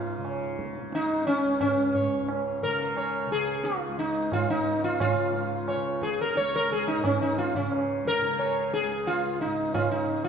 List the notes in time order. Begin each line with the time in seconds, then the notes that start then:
Already playing: C#2 G#2 C#3 F4
0.18 C#3
0.25 tabla na
0.59 tabla ke
0.75 tabla te
0.81 C#3
0.92 D#4, tabla te
1.27 C#4, tabla te
1.43 C#2
1.61 C#4, tabla na, tabla ge
1.95 C#5, tabla ge
2.05 G#2
2.28 tabla na
2.63 C#3 A#4, tabla ke
2.80 tabla te
2.96 C#5, tabla na
3.27 C#3
3.31 G#4, tabla te
3.64 F4, tabla te
3.88 C#2
3.98 D#4, tabla te
4.32 F4, tabla na, tabla ge
4.50 G#2 D#4
4.66 tabla te
4.84 F4
5.00 F4, tabla na, tabla ge
5.14 C#3
5.34 tabla te
5.68 C#5, tabla na
5.75 C#3
6.02 G#4, tabla ke
6.18 A#4, tabla te
6.35 C#2 C#5, tabla te
6.56 A#4
6.69 G#4, tabla te
6.88 D#4
6.97 G#2
7.04 C#4, tabla na, tabla ge
7.22 D#4
7.37 F4, tabla te
7.54 C#4, tabla ge
7.59 C#3
7.72 tabla na
8.05 A#4, tabla ke
8.22 C#3, tabla te
8.39 C#5, tabla na
8.73 G#4, tabla te
8.83 C#2
9.07 F4, tabla te
9.41 D#4, tabla te
9.46 G#2
9.74 F4, tabla na, tabla ge
9.91 D#4
10.07 C#3, tabla te
10.24 F4